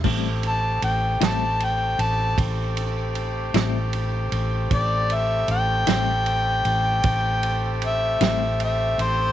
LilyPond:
<<
  \new Staff \with { instrumentName = "Harmonica" } { \time 12/8 \key a \minor \tempo 4. = 51 r8 a''8 g''8 a''8 g''8 a''8 r2. | d''8 e''8 g''2. e''8 e''8 e''8 c''8 | }
  \new Staff \with { instrumentName = "Horn section" } { \time 12/8 \key a \minor <a c' g'>1.~ | <a c' g'>1. | }
  \new Staff \with { instrumentName = "Clean electric guitar" } { \time 12/8 \key a \minor <a, g c' e'>8 r4 <a, g c' e'>8 r2 r8 <a, g c' e'>8 r4 | r4. <a, g c' e'>8 r2 r8 <a, g c' e'>8 r4 | }
  \new Staff \with { instrumentName = "Fingered electric bass" } { \clef bass \time 12/8 \key a \minor a,,4 a,,8 a,,4 a,,8 a,,4. a,,4 a,,8 | a,,4 a,,8 a,,4 a,,8 a,,4. a,,4 a,,8 | }
  \new DrumStaff \with { instrumentName = "Drums" } \drummode { \time 12/8 <cymc bd>8 cymr8 cymr8 <cymr sn>8 cymr8 cymr8 <bd cymr>8 cymr8 cymr8 <cymr sn>8 cymr8 cymr8 | <bd cymr>8 cymr8 cymr8 <cymr sn>8 cymr8 cymr8 <bd cymr>8 cymr8 cymr8 <cymr sn>8 cymr8 cymr8 | }
>>